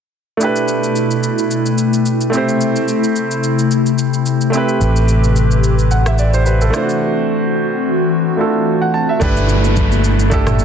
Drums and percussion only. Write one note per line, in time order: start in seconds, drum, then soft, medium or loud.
0.41 shaker medium
0.56 shaker medium
0.68 shaker medium
0.84 shaker medium
0.96 shaker medium
1.11 shaker soft
1.23 shaker medium
1.39 shaker medium
1.51 shaker medium
1.66 shaker medium
1.78 shaker medium
1.93 shaker medium
2.06 shaker medium
2.21 shaker soft
2.33 shaker medium
2.49 shaker soft
2.61 shaker medium
2.76 shaker soft
2.88 shaker medium
3.04 shaker medium
3.16 shaker medium
3.31 shaker soft
3.44 shaker medium
3.59 shaker medium
3.71 shaker medium
3.86 shaker medium
3.98 shaker medium
4.14 shaker medium
4.26 shaker medium
4.41 shaker medium
4.54 shaker medium
4.69 shaker soft
4.81 shaker medium
4.96 shaker medium
5.08 shaker medium
5.24 shaker medium
5.36 shaker medium
5.51 shaker soft
5.64 shaker medium
5.79 shaker medium
5.91 shaker medium
6.06 cross-stick medium
6.06 shaker medium
6.19 shaker medium
6.34 shaker medium
6.46 shaker medium
6.61 shaker soft
6.74 cross-stick medium
6.74 shaker medium
6.89 shaker soft
9.21 kick loud
9.21 low conga medium
9.21 shaker medium
9.37 shaker medium
9.49 shaker medium
9.64 high conga medium
9.64 shaker medium
9.77 kick medium
9.77 low conga medium
9.77 shaker medium
9.92 high conga medium
9.92 shaker medium
10.04 shaker medium
10.19 shaker medium
10.32 kick loud
10.32 shaker medium
10.47 cross-stick medium
10.47 mid tom medium
10.47 shaker medium
10.59 high conga medium
10.59 shaker medium